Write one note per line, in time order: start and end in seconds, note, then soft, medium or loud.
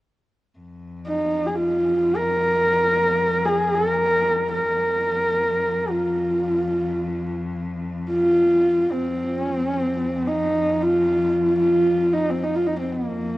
0.58 4.74 F2 soft
1.07 1.47 D#4 medium
1.46 1.56 G#4 medium
1.54 2.17 F4 medium
2.16 3.47 A#4 medium
3.45 3.76 G#4 medium
3.74 4.52 A#4 medium
4.53 5.92 A#4 medium
4.74 8.95 F2 soft
5.90 7.35 F4 medium
8.11 8.92 F4 medium
8.91 9.40 C4 medium
8.96 13.15 F2 medium
9.40 9.53 C#4 medium
9.53 9.67 C4 medium
9.67 9.80 C#4 medium
9.80 10.29 C4 medium
10.27 10.84 D#4 medium
10.83 11.58 F4 medium
11.59 12.14 F4 medium
12.13 12.31 D#4 medium
12.30 12.44 C4 medium
12.43 12.57 D#4 medium
12.55 12.68 F4 medium
12.66 12.79 D#4 medium
12.79 12.93 C4 medium
12.92 13.38 A#3 medium
13.16 13.38 F2 medium